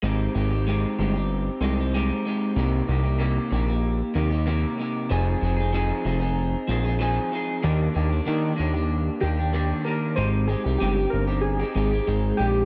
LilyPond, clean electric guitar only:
\new Staff \with { instrumentName = "Clean electric guitar" } { \time 4/4 \key aes \lydian \tempo 4 = 95 <aes c' ees' g'>8 <aes c' ees' g'>16 <c' ees' g'>16 <aes c' ees' g'>8 <aes c' ees' g'>16 <c' ees' g'>8. <aes c' ees' g'>16 <c' ees' g'>16 <aes c' ees' g'>8 <aes c' ees' g'>8 | <c bes ees' g'>8 <c bes ees' g'>16 <bes ees' g'>16 <c bes ees' g'>8 <c bes ees' g'>16 <bes ees' g'>8. <c bes ees' g'>16 <bes ees' g'>16 <c bes ees' g'>8 <c bes ees' g'>8 | <f c' ees' aes'>8 <f c' ees' aes'>16 <c' ees' aes'>16 <f c' ees' aes'>8 <f c' ees' aes'>16 <c' ees' aes'>8. <f c' ees' aes'>16 <c' ees' aes'>16 <f c' ees' aes'>8 <f c' ees' aes'>8 | <ees bes d' g'>8 <ees bes d' g'>16 <bes d' g'>16 <ees bes d' g'>8 <ees bes d' g'>16 <bes d' g'>8. <ees bes d' g'>16 <bes d' g'>16 <ees bes d' g'>8 <ees bes d' g'>8 |
<aes c' ees' g'>8 <aes c' ees' g'>16 <c' ees' g'>16 <aes c' ees' g'>16 <c' ees' g'>8 <c' ees' g'>8 <c' ees' g'>16 <aes c' ees' g'>16 <c' ees' g'>16 <aes c' ees'>8 <aes c' ees' g'>8 | }